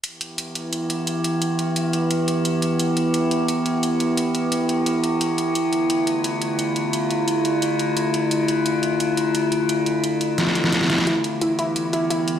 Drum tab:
HH |x-x-x-x-x-x-x-x-|x-x-x-x-x-x-x-x-|x-x-x-x-x-x-x-x-|x-x-x-x-x-x-x-x-|
SD |----------------|----------------|----------------|----------------|

HH |x-x-x-x-x-x-x-x-|x-x-x-x-x-x-x-x-|x-x-x-x-x-x-x-x-|x-x-x-x-x-x-x-x-|
SD |----------------|----------------|----------------|--------oo-ooooo|

HH |x-x-x-x-x-x-x-x-|
SD |----------------|